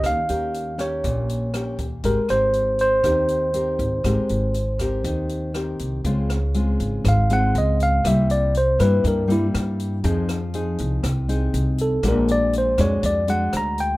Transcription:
<<
  \new Staff \with { instrumentName = "Tine electric piano" } { \time 4/4 \key aes \major \tempo 4 = 120 f''4. des''2 r8 | bes'8 c''4 c''2~ c''8~ | c''2. r4 | \key des \major r2 f''8 ges''8 ees''8 f''8 |
e''8 d''8 c''8 ces''8 bes'8 e'8 r4 | r2. r8 a'8 | bes'8 d''8 c''8 des''8 d''8 ges''8 bes''8 g''8 | }
  \new Staff \with { instrumentName = "Nylon-string guitar" } { \time 4/4 \key aes \major << { <des' g' bes'>8 <des' g' bes'>4 <des' g' bes'>4. <des' g' bes'>8 r8 | <c' g' bes'>8 <c' g' bes'>4. <c' g' bes'>4 <c' g' bes'>4 | <c' g' bes'>4 r8 <c' g' bes'>4. <c' g' bes'>4 | \key des \major <aes c' f'>8 r8 <aes c' f'>4 r8 <aes c' f'>4. |
<g bes e'>4 r8 <g bes e'>4 <g bes e'>4. | <c' ees' aes'>8 r8 <c' ees' aes'>4 r8 <c' ees' aes'>4. | <aes d' ges'>4. <aes d' ges'>4 <aes d' ges'>4. | } \\ { ees2 bes,2 | aes2 ees2 | aes2 ees2 | des2 aes,2 |
c2 g,2 | f2 c2 | bes,2 r2 | } >> }
  \new Staff \with { instrumentName = "Upright bass" } { \clef bass \time 4/4 \key aes \major ees,16 r16 ees,4. bes,,4. ees,8 | aes,,16 r16 aes,,4. ees,4. aes,,8 | aes,,16 r16 aes,,4. ees,4. c,8 | \key des \major des,4. aes,,8 aes,,4 des,4 |
c,4. g,8 g,4 g,4 | f,4. c,8 c,4 c,4 | bes,,4. f,8 f,4 d,4 | }
  \new DrumStaff \with { instrumentName = "Drums" } \drummode { \time 4/4 <hh bd ss>8 hh8 hh8 <hh ss>8 <hh bd>8 hh8 <hh ss>8 <hh bd>8 | <hh bd>8 <hh ss>8 hh8 hh8 <hh bd ss>8 hh8 hh8 <hh bd>8 | <hh bd ss>8 hh8 hh8 <hh bd ss>8 <hh bd>8 hh8 <hh ss>8 hh8 | <hh bd>8 <hh ss>8 hh8 hh8 <hh bd ss>8 hh8 hh8 hh8 |
<hh bd ss>8 hh8 hh8 <hh ss>8 <hh bd>8 hh8 <hh ss>8 hh8 | <hh bd>8 <hh ss>8 hh8 hh8 <hh bd ss>8 hh8 hh8 hh8 | <hh bd ss>8 hh8 hh8 <hh bd ss>8 <hh bd>8 hh8 <hh ss>8 hh8 | }
>>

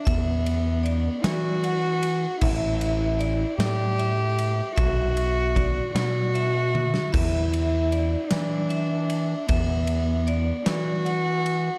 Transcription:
<<
  \new Staff \with { instrumentName = "Vibraphone" } { \time 6/8 \key e \minor \tempo 4. = 51 e''4 d''4 fis''4 | e''4 d''4 e''4 | e''4 d''4 e''4 | e''4 d''4 e''4 |
e''4 d''4 fis''4 | }
  \new Staff \with { instrumentName = "Cello" } { \time 6/8 \key e \minor b4. fis'4. | e'4. g'4. | fis'4. fis'4. | e'4. d'4. |
b4. fis'4. | }
  \new Staff \with { instrumentName = "Picked electric bass" } { \clef bass \time 6/8 \key e \minor e,4. e4. | a,,4. a,4. | b,,4. b,4. | e,4. e4. |
e,4. e4. | }
  \new DrumStaff \with { instrumentName = "Drums" } \drummode { \time 6/8 <bd cymr>8 cymr8 cymr8 <cymr sn>8 cymr8 cymr8 | <cymc bd>8 cymr8 cymr8 <cymr sn>8 cymr8 cymr8 | <bd cymr>8 cymr8 <bd cymr>8 <cymr sn>8 cymr8 tommh16 sn16 | <cymc bd>8 cymr8 cymr8 <cymr sn>8 cymr8 cymr8 |
<bd cymr>8 cymr8 cymr8 <cymr sn>8 cymr8 cymr8 | }
>>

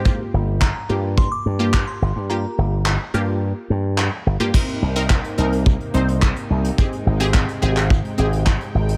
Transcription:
<<
  \new Staff \with { instrumentName = "Synth bell" } { \time 4/4 \key c \minor \tempo 4 = 107 r4 bes''4 c'''16 d'''8. d'''16 c'''8. | bes''2. r4 | r1 | r1 | }
  \new Staff \with { instrumentName = "Synth pluck" } { \time 4/4 \key c \minor <bes f' g'>4~ <bes f' g'>16 r16 <bes f' g'>4 r16 <bes f' g'>4 r16 | <bes f' g'>4~ <bes f' g'>16 r16 <bes f' g'>4. r8. <bes f' g'>16 | <c' ees' bes'>8 r16 <c' ees' bes'>8 r16 <c' ees' bes'>8. r16 <c' ees' c''>4~ <c' ees' c''>16 r16 | <c' g' aes'>8 r16 <c' g' aes'>8 r16 <c' g' aes'>8. r16 <c' g' aes'>4~ <c' g' aes'>16 r16 | }
  \new Staff \with { instrumentName = "Analog synth pad" } { \time 4/4 \key c \minor << { r1 | r1 | <c ees' g''>1~ | <c ees' g''>1 | } \\ { r1 | r1 | bes1 | aes1 | } >> }
  \new Staff \with { instrumentName = "Slap bass" } { \clef bass \time 4/4 \key c \minor aes,8 g,,4 g,4 g,4 g,,16 g,16~ | g,8 g,,4 g,4 g,4 g,,16 g,16 | r8 c,4 c,4 c,4 c,8 | r8 aes,,4 aes,,4 aes,,4 aes,,8 | }
  \new DrumStaff \with { instrumentName = "Drums" } \drummode { \time 4/4 bd4 <hc bd sn>4 bd4 <hc bd sn>4 | r4 <hc sn>4 r4 <hc sn>4 | <cymc bd>16 hh8 hh16 <hc bd sn>16 hh8 hh16 bd16 hh8 hh16 <hc bd sn>16 hh8 hh16 | bd16 hh8 hh16 <hc bd sn>16 hh8 <hc hh>16 bd16 hh8 hh16 <hc bd sn>16 hh8 hh16 | }
>>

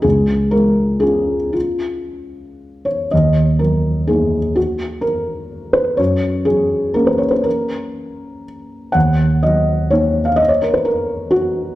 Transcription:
<<
  \new Staff \with { instrumentName = "Felt piano" } { \time 3/4 \key ees \minor \tempo 4 = 124 aes'4 bes'4 aes'4 | f'2~ f'8 des''8 | ees''4 bes'4 aes'4 | ges'4 bes'4. ces''8 |
des''4 aes'4 bes'16 ces''16 des''16 ces''16 | bes'2 r4 | ges''4 ees''4 des''8. f''16 | ees''16 des''16 bes'16 ces''16 bes'4 ges'4 | }
  \new Staff \with { instrumentName = "Felt piano" } { \time 3/4 \key ees \minor des,4 aes4 <des' f'>4~ | <des' f'>2. | ees,4 ges4 <bes ees'>4~ | <bes ees'>2. |
ges,4 ges4 <bes des'>4~ | <bes des'>2. | ees,4 ges4 <bes ees'>4~ | <bes ees'>2. | }
>>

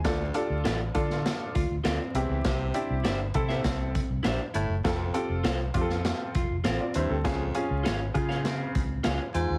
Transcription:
<<
  \new Staff \with { instrumentName = "Clean electric guitar" } { \time 4/4 \key f \major \tempo 4 = 100 r4 <f' a' d'' f''>16 r4. r16 <f' a' d'' f''>16 r8. | r4 <e' g' c'' e''>16 r8 <e' g' c'' e''>16 r4 <e' g' c'' e''>16 r8. | r4 <f' a' c'' f''>16 r4. r16 <f' a' c'' f''>16 r8. | r4 <f' aes' des'' f''>16 r8 <f' aes' des'' f''>16 r4 <f' aes' des'' f''>16 r8. | }
  \new Staff \with { instrumentName = "Upright piano" } { \time 4/4 \key f \major << { r1 | r1 | r2. r16 <f' d''>16 <e' c''>16 <c' a'>16~ | <c' a'>16 r2. r8. | } \\ { <d' f' a'>16 r16 <d' f' a'>8 r8 <d' f' a'>4 r4 <c' e' g'>8~ | <c' e' g'>8 <c' e' g'>8 r8 <c' e' a'>4 r4. | <c' f' a'>16 r16 <c' f' a'>8 r8 <c' f' g' a'>4 r4. | <des' f' aes'>16 r16 <des' f' aes'>8 r8 <des f' aes'>4 r4. | } >> }
  \new Staff \with { instrumentName = "Hollow-body jazz guitar" } { \time 4/4 \key f \major r8 g'8 r8 f'8 r8 f'8 c'4 | r8 d'8 d'8 e'8 c'4 d'8 e'8 | r8 g'8 r8 f'8 r8 f'8 c'4 | r8 des'8 des'8 f'8 c'4 des'8 f'8 | }
  \new Staff \with { instrumentName = "Baritone saxophone" } { \clef bass \time 4/4 \key f \major d,8. r2 r8. e,8 | c8. r2 r8. a,8 | f,8. r2 r8. g,8 | f,8. r2 r8. aes,8 | }
  \new Staff \with { instrumentName = "Fingered electric bass" } { \clef bass \time 4/4 \key f \major d,8 r16 d,16 a,,8 d8. r16 d,16 d,16 d,16 r16 c,16 des,16 | c,8 r16 c,16 g,,8 c8 c,8. c,16 bes,,16 r16 g,,16 ges,,16 | f,,8 r16 f,,16 c,8 f,8. r16 f,,16 f,,16 a,,16 r16 ees,16 d,16 | r8. des,16 aes,,8 des4 des,8 des,16 r16 e,16 ees,16 | }
  \new DrumStaff \with { instrumentName = "Drums" } \drummode { \time 4/4 <hh bd sn>8 hh8 <hh sn>8 <hh bd>16 sn16 <hh sn>8 <hh bd>8 <hh sn>8 hh8 | <hh bd sn>8 hh8 <hh sn>8 <hh bd>16 sn16 <hh bd sn>8 <hh bd>8 <hh sn>8 hh8 | <hh bd sn>8 hh8 <hh sn>8 <hh bd>16 sn16 <hh sn>8 <hh bd>8 <hh sn>8 hh8 | <hh bd sn>8 hh8 <hh sn>8 <hh bd>16 sn16 <hh sn>8 <hh bd>8 <hh sn>8 hh8 | }
>>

